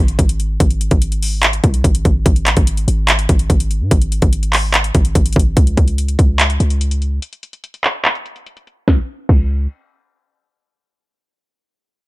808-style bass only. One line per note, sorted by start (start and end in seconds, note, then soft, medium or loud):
0.00 0.18 G#1 loud
0.19 0.58 G#1 loud
0.60 0.90 G#1 loud
0.91 1.61 G#1 loud
1.64 1.83 C2 loud
1.84 2.04 G#1 loud
2.05 2.25 G#1 loud
2.26 2.48 G#1 loud
2.46 2.56 A1 loud
2.57 2.87 G#1 loud
2.88 3.27 G#1 loud
3.29 3.49 G#1 loud
3.50 3.82 G#1 loud
3.81 3.91 G#2 loud
3.91 4.21 G#1 loud
4.22 4.92 G#1 loud
4.95 5.15 G#1 loud
5.15 5.35 G#1 loud
5.36 5.56 G#1 loud
5.57 5.77 C#2 loud
5.77 6.17 C#2 loud
6.19 6.59 C#2 loud
6.60 7.20 C#2 loud
8.88 8.99 C#2 loud
9.29 9.68 C#2 loud